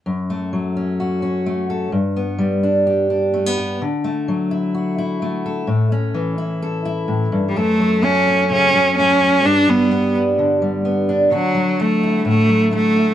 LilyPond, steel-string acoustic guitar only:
\new Staff \with { instrumentName = "Steel-string acoustic guitar" } { \time 4/4 \key fis \phrygian \tempo 4 = 128 << { r8 a4 cis'8 fis'8 cis'8 a8 a'8 | r8 b4 d'8 g'8 d'8 a16 b16 g'8 | r8 a4 e'8 fis'8 e'8 a8 a'8 | r8 cis'4 e'8 a'8 e'4. |
a'4 a8 cis'4. a8 cis'8 | g'4 b8 d'4. b8 d'8 | fis'4 a8 e'4. a8 e'8 | } \\ { fis,4 fis2. | g,4 g2. | d4 fis2. | a,4 e2 a,8 g,8 |
fis,8 fis4. cis8 fis4. | g,8 g4. d8 g4. | d8 fis4. a,8 fis4. | } >> }